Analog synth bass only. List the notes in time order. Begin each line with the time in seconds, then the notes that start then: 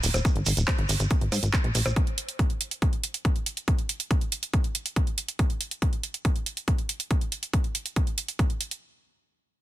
0.03 D#1
0.14 D#1
0.36 G#1
0.46 G#1
0.57 D#1
0.78 G#1
0.89 G#1
1.00 G#1
1.21 G#1
1.32 G#2
1.43 G#1
1.64 A#1
1.75 A#1
1.86 A#1